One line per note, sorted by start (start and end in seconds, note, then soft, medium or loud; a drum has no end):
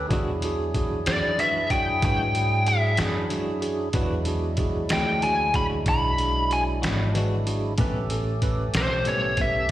0.08 1.04 E2 medium
0.08 0.30 E3 medium
0.08 3.90 F#3 medium
0.08 0.30 G#3 medium
0.08 3.89 D4 medium
0.08 0.35 D4 medium
0.08 3.90 E4 medium
0.08 3.89 G#4 medium
0.08 kick loud
0.08 closed hi-hat medium
0.13 0.31 D4 medium
0.13 0.36 F#4 medium
0.13 0.31 F#4 medium
0.13 0.36 G#4 medium
0.42 0.67 D4 medium
0.42 0.68 F#4 medium
0.42 0.68 G#4 medium
0.42 closed hi-hat medium
0.74 0.98 D4 medium
0.74 0.99 F#4 medium
0.74 0.99 G#4 medium
0.74 kick medium
0.74 closed hi-hat medium
1.06 2.00 F#2 medium
1.06 1.30 D4 medium
1.06 1.31 F#4 soft
1.06 1.31 G#4 medium
1.06 1.40 D5 medium
1.06 snare medium
1.06 closed hi-hat medium
1.38 1.58 E3 medium
1.38 1.58 G#3 medium
1.38 1.63 D4 soft
1.38 1.59 D4 medium
1.38 1.63 F#4 soft
1.38 1.59 F#4 medium
1.38 1.64 B4 medium
1.38 1.72 E5 medium
1.38 closed hi-hat medium
1.70 1.91 G#3 soft
1.70 1.95 D4 medium
1.70 1.91 D4 soft
1.70 1.90 F#4 soft
1.70 1.95 F#4 soft
1.70 1.95 G#4 medium
1.70 2.04 G5 medium
1.70 kick medium
1.70 closed hi-hat medium
2.02 2.96 G#2 medium
2.02 2.22 E3 medium
2.02 2.23 G#3 medium
2.02 2.27 D4 medium
2.02 2.23 D4 medium
2.02 2.27 F#4 soft
2.02 2.23 F#4 medium
2.02 2.27 B4 medium
2.02 2.70 G5 medium
2.02 kick medium
2.02 closed hi-hat medium
2.34 2.58 D4 soft
2.34 2.58 F#4 soft
2.34 2.59 G#4 medium
2.34 closed hi-hat medium
2.66 2.90 D4 soft
2.66 2.91 F#4 soft
2.66 2.91 G#4 medium
2.66 2.97 E5 medium
2.66 closed hi-hat medium
2.97 3.92 F#2 medium
2.97 3.22 D4 soft
2.97 3.19 D4 soft
2.97 3.22 F#4 soft
2.97 3.18 F#4 soft
2.97 3.23 G#4 medium
2.97 snare medium
2.97 closed hi-hat medium
3.02 3.19 G#3 soft
3.30 3.50 E3 medium
3.30 3.50 G#3 medium
3.30 3.54 D4 medium
3.30 3.51 D4 medium
3.30 3.55 F#4 medium
3.30 3.51 F#4 medium
3.30 3.55 G#4 medium
3.30 closed hi-hat medium
3.61 3.86 D4 medium
3.61 3.86 F#4 medium
3.61 3.86 G#4 medium
3.61 closed hi-hat medium
3.93 4.87 E2 medium
3.93 4.14 E3 medium
3.93 7.74 F#3 medium
3.93 7.74 G#3 medium
3.93 4.14 G#3 medium
3.93 7.74 D4 medium
3.93 4.19 D4 medium
3.93 4.14 D4 medium
3.93 7.75 E4 medium
3.93 4.19 F#4 medium
3.93 4.15 F#4 medium
3.93 4.19 B4 medium
3.93 kick medium
3.93 closed hi-hat medium
4.25 4.50 D4 medium
4.25 4.51 F#4 medium
4.25 4.51 G#4 medium
4.25 closed hi-hat medium
4.57 4.82 D4 medium
4.57 4.83 F#4 medium
4.57 4.83 G#4 medium
4.57 kick medium
4.57 closed hi-hat medium
4.89 5.84 D2 medium
4.89 5.15 D4 soft
4.89 5.15 F#4 soft
4.89 5.16 G#4 medium
4.89 5.23 G5 medium
4.89 snare loud
4.89 closed hi-hat medium
5.22 5.42 E3 medium
5.22 5.42 G#3 medium
5.22 5.47 D4 soft
5.22 5.43 D4 medium
5.22 5.47 F#4 soft
5.22 5.43 F#4 medium
5.22 5.48 G#4 medium
5.22 5.53 G#5 medium
5.22 closed hi-hat medium
5.54 5.75 G#3 soft
5.54 5.78 D4 medium
5.54 5.74 D4 soft
5.54 5.79 F#4 soft
5.54 5.74 F#4 medium
5.54 5.79 G#4 medium
5.54 5.64 B5 medium
5.54 kick medium
5.54 closed hi-hat medium
5.86 6.79 B1 medium
5.86 6.06 E3 medium
5.86 6.06 G#3 medium
5.86 6.10 D4 medium
5.86 6.06 D4 medium
5.86 6.11 F#4 soft
5.86 6.06 F#4 medium
5.86 6.11 G#4 medium
5.86 6.53 B5 medium
5.86 kick medium
5.86 closed hi-hat medium
6.18 6.42 D4 medium
6.18 6.42 F#4 soft
6.18 6.43 G#4 medium
6.18 closed hi-hat medium
6.50 6.74 D4 medium
6.50 6.75 F#4 soft
6.50 6.75 G#4 medium
6.50 6.61 G#5 medium
6.50 closed hi-hat medium
6.82 7.76 G#1 medium
6.82 7.03 G#3 soft
6.82 7.06 D4 soft
6.82 7.02 D4 soft
6.82 7.01 F#4 medium
6.82 7.06 F#4 soft
6.82 7.07 G#4 medium
6.82 snare medium
6.82 closed hi-hat medium
7.13 7.34 E3 medium
7.13 7.34 G#3 medium
7.13 7.38 D4 medium
7.13 7.35 D4 medium
7.13 7.38 F#4 medium
7.13 7.38 B4 medium
7.13 closed hi-hat medium
7.18 7.35 F#4 medium
7.46 7.70 D4 medium
7.46 7.70 F#4 medium
7.46 7.71 G#4 medium
7.46 closed hi-hat medium
7.78 8.71 A1 medium
7.78 7.98 A2 medium
7.78 7.98 G3 medium
7.78 9.68 A3 medium
7.78 7.98 B3 medium
7.78 9.68 C#4 medium
7.78 8.02 C#4 medium
7.78 7.99 C#4 medium
7.78 9.68 G4 medium
7.78 8.03 G4 medium
7.78 9.68 A4 medium
7.78 8.03 B4 medium
7.78 kick loud
7.78 closed hi-hat medium
8.10 8.34 C#4 medium
8.10 8.35 G4 medium
8.10 8.35 A4 medium
8.10 closed hi-hat medium
8.42 8.66 C#4 medium
8.42 8.66 G4 medium
8.42 8.67 B4 medium
8.42 kick medium
8.42 closed hi-hat medium
8.74 9.68 B1 medium
8.74 8.99 C#4 medium
8.74 8.99 G4 soft
8.74 8.99 A4 medium
8.74 9.08 C5 medium
8.74 snare loud
8.74 closed hi-hat medium
9.05 9.26 A2 medium
9.05 9.26 G3 medium
9.05 9.26 B3 medium
9.05 9.31 C#4 medium
9.05 9.27 C#4 medium
9.05 9.31 G4 soft
9.05 9.31 B4 medium
9.05 9.40 C#5 medium
9.05 closed hi-hat medium
9.37 9.59 G3 soft
9.37 9.58 B3 soft
9.37 9.57 C#4 medium
9.37 9.63 C#4 soft
9.37 9.63 G4 soft
9.37 kick medium
9.37 closed hi-hat medium
9.41 9.64 B4 medium
9.41 9.71 E5 medium